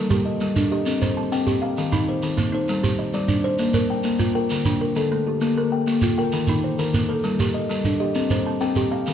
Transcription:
0.00 0.25 G3 medium
0.00 0.10 A4 medium
0.00 0.26 A4 medium
0.10 0.41 G3 medium
0.10 0.56 G4 medium
0.10 shekere medium
0.25 0.71 D#5 medium
0.40 0.71 G3 medium
0.40 shekere medium
0.56 0.86 D4 medium
0.56 shekere medium
0.71 1.17 G4 medium
0.71 1.02 D#5 medium
0.86 1.17 C4 medium
0.86 shekere medium
1.02 1.32 C4 medium
1.02 1.47 C5 medium
1.02 shekere medium
1.17 1.62 A5 medium
1.32 1.62 C4 medium
1.32 1.78 G5 medium
1.32 shekere medium
1.47 1.77 G4 medium
1.47 shekere medium
1.62 2.08 F5 medium
1.62 1.93 F5 medium
1.78 2.08 D#3 medium
1.78 shekere medium
1.92 2.23 D#3 medium
1.92 2.38 D#4 medium
1.92 shekere medium
2.09 2.53 C5 medium
2.22 2.53 D#3 medium
2.22 shekere medium
2.38 2.68 A#3 medium
2.38 shekere medium
2.52 2.98 D#4 medium
2.52 2.84 C5 medium
2.68 2.99 G3 medium
2.68 shekere medium
2.83 3.14 G3 medium
2.83 3.29 G4 medium
2.83 shekere medium
2.99 3.44 D#5 medium
3.13 3.44 G3 medium
3.13 3.60 D5 medium
3.13 shekere medium
3.28 3.59 D4 medium
3.28 shekere medium
3.44 3.90 C5 medium
3.44 3.75 C5 medium
3.58 3.90 A#3 medium
3.58 shekere medium
3.74 4.05 A#3 medium
3.74 4.20 A#4 medium
3.74 shekere medium
3.90 4.34 G5 medium
4.04 4.35 A#3 medium
4.04 shekere medium
4.19 4.50 F4 medium
4.19 shekere medium
4.35 4.80 A#4 medium
4.35 4.66 G5 medium
4.50 4.81 D3 medium
4.50 shekere medium
4.65 4.96 D3 medium
4.65 5.11 D4 medium
4.65 shekere medium
4.81 5.27 A#4 medium
4.96 5.27 D3 medium
4.96 5.42 A4 medium
4.96 shekere medium
5.12 5.42 A3 medium
5.27 5.57 G4 medium
5.27 5.73 G4 medium
5.41 5.72 A#3 medium
5.41 shekere medium
5.58 5.88 A#3 medium
5.58 6.03 A#4 medium
5.72 6.17 G5 medium
5.87 6.18 A#3 medium
5.87 shekere medium
6.02 6.33 F4 medium
6.02 shekere medium
6.18 6.64 A#4 medium
6.18 6.48 G5 medium
6.32 6.64 D#3 medium
6.32 shekere medium
6.47 6.79 D#3 medium
6.47 6.94 D#4 medium
6.47 shekere medium
6.64 7.09 C5 medium
6.79 7.09 D#3 medium
6.79 7.24 A#4 medium
6.79 shekere medium
6.94 7.24 A#3 medium
6.94 shekere medium
7.09 7.39 A4 medium
7.09 7.55 A4 medium
7.24 7.54 G3 medium
7.24 shekere medium
7.40 7.70 G3 medium
7.40 7.85 G4 medium
7.40 shekere medium
7.54 7.99 D#5 medium
7.70 8.00 G3 medium
7.70 shekere medium
7.84 8.16 D4 medium
7.84 shekere medium
8.00 8.46 G4 medium
8.00 8.31 D#5 medium
8.15 8.46 C4 medium
8.15 shekere medium
8.30 8.61 C4 medium
8.30 8.76 C5 medium
8.30 shekere medium
8.46 8.92 A5 medium
8.61 8.92 C4 medium
8.61 9.07 G5 medium
8.61 shekere medium
8.76 9.07 G4 medium
8.76 shekere medium
8.91 9.14 F5 medium
9.07 9.14 D#3 medium
9.07 shekere medium

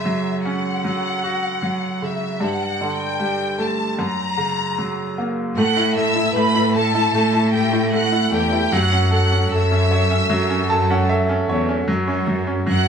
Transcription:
0.00 2.38 F#2 medium
0.00 1.19 C#3 soft
0.00 0.40 E5 medium
0.05 0.83 F#3 soft
0.45 1.98 C#4 soft
0.45 2.02 F#5 medium
0.84 1.61 F#3 soft
1.24 2.38 F#4 soft
1.62 2.38 F#3 soft
2.02 2.40 C#3 soft
2.02 2.43 E5 medium
2.40 3.94 G2 medium
2.40 2.95 F#5 medium
2.81 3.95 D3 soft
2.96 3.60 G5 medium
3.19 3.96 G3 soft
3.58 3.97 A3 soft
3.58 4.00 A5 medium
3.99 5.52 F#2 medium
4.03 5.15 A#5 medium
4.38 5.53 C#3 soft
4.78 5.54 F#3 soft
5.18 5.56 A#3 soft
5.55 6.31 A2 loud
5.55 5.95 A3 medium
5.55 5.94 F#5 loud
5.55 5.94 F#6 medium
5.76 6.14 E4 soft
5.96 6.34 A3 soft
5.96 6.33 E5 medium
5.96 6.33 E6 medium
6.16 6.54 E4 soft
6.35 7.10 A2 loud
6.35 6.73 A3 medium
6.35 6.76 B4 medium
6.35 6.75 B5 loud
6.55 6.93 E4 soft
6.75 7.13 A3 soft
6.75 7.51 A4 medium
6.75 7.50 A5 loud
6.95 7.31 E4 medium
7.13 8.28 A2 loud
7.13 7.52 A3 medium
7.33 7.71 E4 soft
7.54 7.91 A3 medium
7.54 7.95 G4 medium
7.54 7.94 G5 medium
7.73 8.11 E4 soft
7.92 8.30 A3 medium
7.92 8.30 F#5 medium
7.92 8.31 F#6 medium
8.12 8.51 E4 medium
8.31 8.69 E2 medium
8.31 8.70 A3 medium
8.31 8.73 G4 medium
8.31 8.72 G5 medium
8.52 8.71 E4 medium
8.72 9.47 F#2 medium
8.72 10.28 F#3 medium
8.72 9.12 F#5 loud
8.72 9.13 F#6 medium
8.92 9.30 C#4 medium
9.11 9.50 A4 medium
9.11 9.49 F#5 medium
9.15 9.50 F#6 medium
9.31 9.69 C#4 soft
9.51 10.26 F#2 loud
9.51 10.68 A4 medium
9.51 11.10 E5 medium
9.55 11.11 E6 medium
9.71 10.09 C#4 medium
9.91 11.45 C#5 medium
10.11 10.48 C#4 medium
10.30 11.44 F#2 loud
10.30 11.84 F#3 medium
10.50 10.89 C#4 medium
10.70 11.08 A4 medium
10.70 10.88 A5 medium
10.90 11.28 C#4 medium
10.90 11.08 F#5 medium
11.09 11.86 A4 medium
11.09 11.46 E5 medium
11.29 11.67 C#4 medium
11.49 11.85 E2 medium
11.49 11.86 C#5 medium
11.68 11.87 C#4 medium
11.87 12.63 F#2 loud
11.87 12.26 F#3 medium
12.07 12.46 C#4 medium
12.27 12.65 F#3 medium
12.47 12.86 C#4 medium
12.66 12.88 F#2 loud
12.66 12.88 F#3 medium
12.66 12.88 F#6 medium
12.71 12.88 F#5 medium

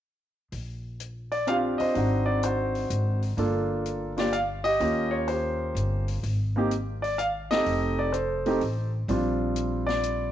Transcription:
0.52 1.76 A#1 medium
0.52 open hi-hat soft
1.00 closed hi-hat soft
1.32 1.46 D5 medium
1.32 open hi-hat soft
1.47 1.93 C4 soft
1.47 1.93 D4 soft
1.47 1.95 F4 soft
1.47 1.96 G4 medium
1.47 1.55 F5 medium
1.47 closed hi-hat soft
1.78 2.39 C5 medium
1.78 2.28 D#5 medium
1.78 muted upright bass stroke soft
1.78 open hi-hat soft
1.94 2.87 G#1 medium
1.94 3.28 C4 soft
1.94 3.28 D4 soft
1.94 3.29 D#4 soft
1.94 2.43 F#4 medium
1.94 open hi-hat soft
2.26 2.41 D5 medium
2.43 3.20 F#4 soft
2.43 3.19 C5 medium
2.43 closed hi-hat soft
2.75 open hi-hat soft
2.90 3.35 G#1 medium
2.90 closed hi-hat soft
3.22 open hi-hat soft
3.37 4.76 G1 medium
3.37 4.11 A#3 medium
3.37 4.12 D4 medium
3.37 4.12 F4 soft
3.37 4.12 A4 medium
3.37 open hi-hat soft
3.86 closed hi-hat soft
4.17 4.31 A#3 soft
4.17 4.31 D4 soft
4.17 4.32 F4 soft
4.17 4.32 G4 medium
4.17 4.34 D5 medium
4.17 snare soft
4.17 open hi-hat soft
4.33 4.40 F5 medium
4.33 closed hi-hat soft
4.64 4.80 G4 medium
4.64 5.14 D#5 loud
4.64 open hi-hat soft
4.80 5.72 D#2 medium
4.80 6.14 A#3 soft
4.80 6.14 C#4 soft
4.80 6.14 F4 soft
4.80 5.28 G4 soft
4.80 open hi-hat soft
5.11 5.26 C#5 medium
5.28 6.05 G4 soft
5.28 6.04 C5 medium
5.28 open hi-hat soft
5.75 6.20 G1 medium
5.75 closed hi-hat soft
6.08 open hi-hat soft
6.23 7.62 G#1 medium
6.23 open hi-hat soft
6.56 6.70 A#3 medium
6.56 6.70 C4 medium
6.56 6.70 D#4 medium
6.56 6.71 G4 medium
6.71 closed hi-hat soft
7.02 7.17 D5 medium
7.02 open hi-hat soft
7.18 7.26 F5 medium
7.18 closed hi-hat soft
7.51 8.11 A3 medium
7.51 8.11 C4 soft
7.51 8.11 D#4 soft
7.51 8.12 G4 medium
7.51 8.10 A4 medium
7.51 8.00 D#5 medium
7.51 snare soft
7.51 open hi-hat soft
7.66 8.57 F1 medium
7.66 open hi-hat soft
7.99 8.13 D5 medium
8.12 8.89 A4 soft
8.12 8.89 C5 medium
8.12 closed hi-hat soft
8.46 8.60 A3 medium
8.46 8.60 C4 medium
8.46 8.60 D#4 medium
8.46 8.61 G4 medium
8.46 open hi-hat soft
8.61 9.05 A1 medium
8.61 open hi-hat soft
9.08 10.32 A#1 medium
9.08 10.32 G3 medium
9.08 10.32 C4 soft
9.08 10.32 D4 medium
9.08 10.32 F4 medium
9.08 open hi-hat soft
9.56 closed hi-hat soft
9.87 10.32 D5 medium
9.87 snare soft
9.87 open hi-hat soft
10.03 closed hi-hat soft

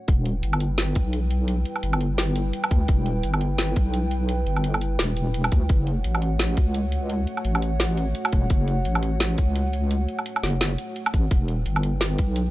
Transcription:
0.08 0.42 E1 loud
0.08 5.66 G3 medium
0.08 5.66 E4 medium
0.08 5.66 B4 medium
0.08 5.66 G5 medium
0.08 kick loud
0.08 closed hi-hat medium
0.26 closed hi-hat soft
0.43 0.95 G1 loud
0.43 closed hi-hat medium
0.53 low woodblock medium
0.60 closed hi-hat medium
0.78 snare loud
0.78 closed hi-hat medium
0.95 1.65 B1 loud
0.95 kick loud
0.95 closed hi-hat medium
1.13 closed hi-hat medium
1.23 shaker soft
1.31 closed hi-hat medium
1.48 closed hi-hat medium
1.65 closed hi-hat soft
1.65 shaker soft
1.76 low woodblock soft
1.83 2.53 G1 loud
1.83 closed hi-hat medium
1.93 low woodblock medium
2.01 closed hi-hat medium
2.18 snare loud
2.18 closed hi-hat medium
2.36 closed hi-hat medium
2.36 shaker medium
2.53 closed hi-hat medium
2.64 low woodblock medium
2.71 2.88 D2 loud
2.71 kick loud
2.71 closed hi-hat medium
2.88 3.23 E1 medium
2.88 kick loud
2.88 closed hi-hat medium
3.06 closed hi-hat soft
3.23 3.75 G1 loud
3.23 closed hi-hat medium
3.34 low woodblock medium
3.41 closed hi-hat medium
3.58 snare loud
3.58 closed hi-hat medium
3.76 4.46 B1 loud
3.76 kick loud
3.76 closed hi-hat medium
3.94 closed hi-hat medium
4.04 shaker soft
4.11 closed hi-hat medium
4.29 closed hi-hat medium
4.46 4.98 G1 loud
4.46 closed hi-hat soft
4.46 shaker soft
4.57 low woodblock soft
4.64 closed hi-hat medium
4.74 low woodblock medium
4.81 closed hi-hat medium
4.99 5.51 E1 loud
4.99 snare loud
4.99 closed hi-hat medium
5.17 closed hi-hat medium
5.17 shaker medium
5.34 closed hi-hat medium
5.44 low woodblock medium
5.52 5.68 D2 medium
5.52 kick loud
5.52 closed hi-hat medium
5.69 6.04 F#1 loud
5.69 11.27 A3 medium
5.69 11.27 F#4 medium
5.69 11.27 C#5 medium
5.69 11.27 F#5 medium
5.69 kick loud
5.69 closed hi-hat medium
5.87 closed hi-hat soft
6.04 6.56 A1 loud
6.04 closed hi-hat medium
6.15 low woodblock soft
6.22 closed hi-hat medium
6.39 snare loud
6.39 closed hi-hat medium
6.57 7.26 C#2 loud
6.57 kick loud
6.57 closed hi-hat medium
6.74 closed hi-hat medium
6.85 shaker soft
6.92 closed hi-hat medium
7.10 closed hi-hat medium
7.27 closed hi-hat soft
7.27 shaker soft
7.37 low woodblock soft
7.45 8.14 A1 loud
7.45 closed hi-hat medium
7.55 low woodblock medium
7.62 closed hi-hat medium
7.80 snare loud
7.80 closed hi-hat medium
7.97 closed hi-hat medium
7.97 shaker medium
8.15 closed hi-hat medium
8.25 low woodblock medium
8.33 8.49 E1 medium
8.33 kick loud
8.33 closed hi-hat medium
8.50 8.84 F#1 loud
8.50 kick loud
8.50 closed hi-hat medium
8.68 closed hi-hat soft
8.85 9.37 A1 loud
8.85 closed hi-hat medium
8.95 low woodblock medium
9.03 closed hi-hat medium
9.20 snare loud
9.20 closed hi-hat medium
9.38 10.07 C#2 loud
9.38 kick loud
9.38 closed hi-hat medium
9.56 closed hi-hat medium
9.66 shaker soft
9.73 closed hi-hat medium
9.91 closed hi-hat medium
10.08 closed hi-hat soft
10.08 shaker soft
10.19 low woodblock soft
10.26 closed hi-hat medium
10.36 low woodblock medium
10.43 10.77 F#1 loud
10.43 snare medium
10.43 closed hi-hat medium
10.43 shaker soft
10.61 snare loud
10.61 closed hi-hat medium
10.78 closed hi-hat medium
10.78 shaker medium
10.96 closed hi-hat medium
11.06 low woodblock medium
11.14 11.30 A1 loud
11.14 kick loud
11.14 closed hi-hat medium
11.31 11.65 E1 loud
11.31 12.51 G3 medium
11.31 12.51 E4 medium
11.31 12.51 B4 medium
11.31 12.51 G5 medium
11.31 kick loud
11.31 closed hi-hat medium
11.48 closed hi-hat soft
11.66 12.18 G1 loud
11.66 closed hi-hat medium
11.76 low woodblock medium
11.83 closed hi-hat medium
12.01 snare loud
12.01 closed hi-hat medium
12.18 12.51 B1 loud
12.18 kick loud
12.18 closed hi-hat medium
12.36 closed hi-hat medium
12.46 shaker soft

